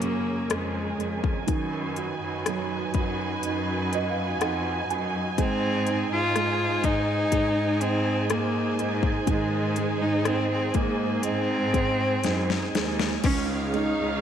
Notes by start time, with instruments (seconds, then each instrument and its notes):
Already playing: cello section F#2, grand piano F#3 G#3 A#3 F#4, string section C#4 G#4 A#4 G#5
0.00 grand piano C#3, cello A#3, closed hi-hat
0.49 cello section F2, cello G#3, cross-stick, closed hi-hat
0.99 cello section F2, grand piano G#3, cross-stick, closed hi-hat
1.24 kick
1.47 cello section F#2, grand piano D#3, string section D#4 F#4 B4, kick, closed hi-hat
1.96 grand piano F#4, closed hi-hat
2.22 cello section F#2
2.46 grand piano F#3, cross-stick, closed hi-hat
2.94 cello section F#2, grand piano F#4, kick, closed hi-hat
3.43 cello section F#2, grand piano D#4, closed hi-hat
3.93 grand piano F#4 D#5, closed hi-hat
4.10 grand piano F5
4.41 cello section F2, grand piano D#4 F#5, cross-stick, closed hi-hat
4.90 cello section F#2, grand piano F#4 G#5, cross-stick, closed hi-hat
5.37 cello section G#2, grand piano G#3, cello C4, string section G#4 C5, kick, closed hi-hat
5.87 grand piano D#4, closed hi-hat
6.11 cello section G#2, cello F4
6.36 grand piano G#3, cross-stick, closed hi-hat
6.84 cello section G#2, cello D#4, grand piano D#4, kick, closed hi-hat
7.32 cello section G#2, grand piano G#3, kick, closed hi-hat
7.81 cello C4, grand piano D#4, closed hi-hat
8.30 grand piano G#3, cello A#3, cross-stick, closed hi-hat
8.78 cello section G#2, grand piano D#4, cross-stick, closed hi-hat
9.03 kick
9.27 cello section G#2, grand piano D#3, cello G#3, kick, closed hi-hat
9.76 grand piano G#3, closed hi-hat
10.01 cello section G#2, cello D#4
10.25 cello C4, grand piano D#4, cross-stick, closed hi-hat
10.51 cello C4
10.74 cello section G#2, grand piano G#3, cello A#3, kick, closed hi-hat
11.22 cello section G#2, cello C4, grand piano D#4, closed hi-hat
11.73 grand piano G#3, kick, closed hi-hat
12.23 cello section F#2, grand piano D#4, snare, closed hi-hat
12.50 snare
12.75 cello section D#2, grand piano G#3, snare, closed hi-hat
13.00 snare
13.23 cello section C#2, grand piano C#3, cello C#4, string section D#4 G#4 C#5 F5, kick, crash, ride
13.73 grand piano G#3, cello D#4, ride
13.99 cello section C#2